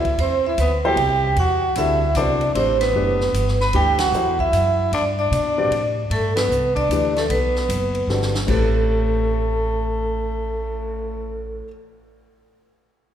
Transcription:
Already playing: D2 E4 E5
0.05 kick, ride
0.18 E2 C4 C5, ride
0.46 E4 E5
0.58 D2 B3 B4, hi-hat pedal, ride
0.85 F#3 B3 E4 G4 A4 C5 G5
0.96 C2, ride
1.36 E2 F#4 F#5, ride
1.75 D2 D3 G3 C4 E4 F#4 A4 E5, hi-hat pedal, ride
2.15 C2 F#3 B3 D4 E4 A4 C5 D5, hi-hat pedal, ride
2.41 ride
2.54 A1 E3 A3 C4 D4 G4 B4 C5, ride
2.80 B3 B4, snare, ride
2.93 F#1 E3 A3 D4 G4 B4
3.21 snare
3.33 G1, hi-hat pedal, ride
3.48 snare
3.60 B4 B5, snare
3.73 D2 E3 A3 D4 G4 B4 G5, ride
3.98 F#4 F#5, snare, ride
4.12 E2 F#3 B3 E4 A4 C5, hi-hat pedal
4.39 E4 E5, kick
4.52 F#2, hi-hat pedal, ride
4.92 G2 D4 D5, ride
5.19 D4 D5
5.31 B2, hi-hat pedal, ride
5.58 G3 C4 F#4 B4 D5
5.71 A2, ride
6.10 G2 A3 A4, ride
6.36 B3 B4, snare, ride
6.49 C2, hi-hat pedal
6.75 D4 D5, kick, ride
6.89 D2 E3 A3 D4 G4 B4, hi-hat pedal, ride
7.16 A3 A4, snare, ride
7.29 B1 B3 B4, ride
7.56 snare
7.69 F#1, hi-hat pedal, ride
7.95 ride
8.07 G1 D3 G3 C4 F#4 A4, snare
8.22 snare
8.35 snare
8.47 A1 A2 A3 C4 G4 A4 B4, kick, crash
8.73 cymbal swell

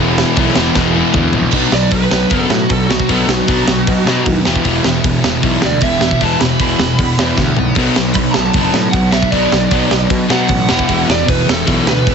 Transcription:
Already playing: E1 E2 E3
0.00 B2 E3 G#3 B3 E4
0.18 E2 B2 E3, snare
0.36 B1 E2 B2 E3, kick, crash
0.55 E1 E2 B2 E3, snare
0.74 E1 E2 B2 E3 G#3 B3 E4, kick, snare
0.95 E2 B2 E3
1.14 D2 E2 B2 E3, kick, mid tom
1.33 A#1 E2 B2 E3, floor tom
1.51 B1 B2 F#3 B3 D4 F#4, kick, crash
1.55 B3
1.72 B1 B2 F#3 D5, snare
1.91 B1 B2 F#3 B4, kick, open hi-hat
2.11 B1 B2 F#3, snare
2.30 F#1 B2 F#3 B3, kick, open hi-hat
2.50 A2 B2 F#3 F#4, snare
2.69 B1 B2 F#3 A4, kick, open hi-hat
2.89 B2 F#3 B3 D4 F#4, snare
3.00 kick
3.07 B1 B2 F#3 B3 D4 F#4 A4, kick, open hi-hat
3.27 B1 B2 F#3 F#4, snare
3.47 B1 B2 F#3 B3, kick, open hi-hat
3.67 B1 B2 F#3, snare
3.87 B2 F#3, kick, open hi-hat
4.05 B2 F#3, snare
4.09 B3
4.26 D#2 B2 F#3, kick, open hi-hat
4.45 E1 E2 B2 E3 B3 E4 G4, snare
4.56 kick
4.64 E1 E2 B2 E3, kick, open hi-hat
4.84 E1 E2 B2, snare
5.04 E1 E2 B2, kick, open hi-hat
5.24 E1 E2 B2, snare
5.42 B1 E2 B2 E3, kick, open hi-hat
5.61 D2 E2 B2 D5, snare
5.81 E1 E2 B2 E3 B3 E4 G4 E5, kick, open hi-hat
6.01 E2 B2 E3 B3 E4 G4, snare
6.11 kick
6.21 E1 E2 B2 E3 A5, kick, open hi-hat
6.41 E1 E2 B2 B5, snare
6.59 E1 E2 B2 E3 B5, kick, open hi-hat
6.79 E1 E2 B2, snare
6.99 E2 B2, kick, open hi-hat
7.18 E2 B2 E3, snare
7.37 D2 E2 B2 E3 B3 E4 G4, kick, snare
7.57 B1 E2 B2, floor tom
7.75 B1 B2 F#3 B3 D4, kick, crash
7.79 B3 F#4
7.96 B1 B2 F#3, snare
8.14 B1 B2 F#3 B5, kick, open hi-hat
8.33 B1 B2 F#3 A5, snare
8.53 F#1 B2 F#3 B3, kick, open hi-hat
8.73 A2 B2 F#3, snare
8.91 B1 B2 F#5, kick, open hi-hat
8.96 F#3
9.11 B2 F#3 B3 D4 F#4 E5, snare
9.22 kick
9.31 B1 B2 F#3 B3 D5, kick, open hi-hat
9.35 D4 F#4
9.52 B1 B2 F#3, snare
9.71 B1 B2 F#3 B3, kick, open hi-hat
9.90 B1 B2 F#3, snare
10.09 B2 F#3, kick, open hi-hat
10.29 B2 F#3 B3 F#5, snare
10.48 A1 B2 F#3, kick, open hi-hat
10.67 E1 E2 B2 E3 B3 E4 G4, snare
10.79 kick
10.88 E1 E2 B2 E3, kick, open hi-hat
11.07 E1 E2 B2 D5, snare
11.25 E1 E2 B2 B4, kick
11.29 open hi-hat
11.46 E1 E2 B2 A4, snare
11.66 B1 E2 B2 E3 A4, kick, open hi-hat
11.86 D2 E2 B2 B4, snare
12.06 E1 E2 B2 E3 B3 E4 G4, kick, open hi-hat

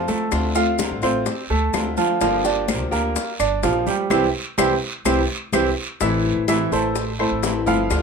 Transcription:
Already playing: F3 A3 C4 F4
0.08 A3 A4, high bongo, high conga, short guiro, maracas
0.31 D2 D3 A3 C4 F4, high bongo, high conga, long guiro, claves, maracas
0.55 A3 C4 F4 F5, high bongo, high conga, maracas
0.79 D3 A3 C4 F4, high bongo, high conga, short guiro, maracas
0.91 A1
1.02 A1 A3 C4 F4 C5, short guiro, claves, maracas
1.26 muted nylon-string guitar stroke, high bongo, high conga, long guiro, maracas
1.50 D2 A3 A4, high bongo, high conga
1.74 D2 D3 A3 C4 F4, high bongo, low bongo, high conga, short guiro, claves, maracas
1.97 F3 F4, high bongo, high conga, short guiro, maracas
2.21 G1 D3 F3 A#3 D4 F4 G4, high bongo, high conga, long guiro, maracas
2.44 F3 A#3 D4 G4 D5, high bongo, high conga, maracas
2.68 F3 A#3 D4 G4, high bongo, high conga, short guiro, claves, maracas
2.80 D2
2.91 D2 F3 A#3 D4 G4 A#4, high bongo, high conga, short guiro, maracas
3.16 muted nylon-string guitar stroke, high bongo, high conga, long guiro, maracas
3.39 G1 D4 D5, high conga, claves, maracas
3.63 A#1 F3 A#3 D4 F4 G4, high bongo, low bongo, high conga, short guiro, maracas
3.87 G3 G4, high bongo, high conga, short guiro, maracas
4.10 C2 E3 G3 C4 E4 G4, low bongo, high conga, long guiro, claves, maracas
4.58 C2 E3 G3 C4 E4 G4, low bongo, high conga, long guiro, claves, maracas
5.05 C2 E3 G3 C4 E4 G4, low bongo, high conga, long guiro, claves, maracas
5.53 C2 E3 G3 C4 E4 G4, low bongo, high conga, long guiro, claves, maracas
6.00 A1 E3 A3 C4 E4 E5, high bongo, high conga, long guiro, maracas
6.25 high bongo, high conga
6.36 A1
6.48 E3 A3 C4 E4 E5, high bongo, high conga, short guiro, claves, maracas
6.72 A1 A3 A4 C5, high bongo, high conga, short guiro, maracas
6.96 muted nylon-string guitar stroke, high bongo, high conga, long guiro, maracas
7.19 A3 C4 E4 A4 C5, high conga, claves
7.31 A1
7.43 E3 A3 C4 E4, high bongo, low bongo, high conga, short guiro, maracas
7.66 G1 F3 A3 C4 E4 F4 F5, high bongo, high conga, short guiro, maracas
7.90 D2 D3 A3 D4 F4, high bongo, high conga, long guiro, claves, maracas

